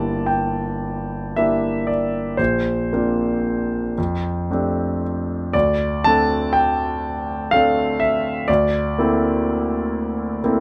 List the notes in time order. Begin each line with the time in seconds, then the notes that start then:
Already playing: G1 A#3 D4 E4 G4 D5 A5
0.26 G5
1.36 A#3 D4 E4 G4 E5
1.87 D5
2.37 A#1 C5
2.93 A#3 C4 D4 F4
3.98 F2
4.51 A3 C4 D4 G4
5.53 D2 D5
6.04 A3 C4 D4 A4 A5
6.53 G5
7.51 A3 C4 D4 A4 F5
8.00 E5
8.48 D2 D5
8.98 A#3 C4 E4 A4
10.44 A#3 C4 E4 A4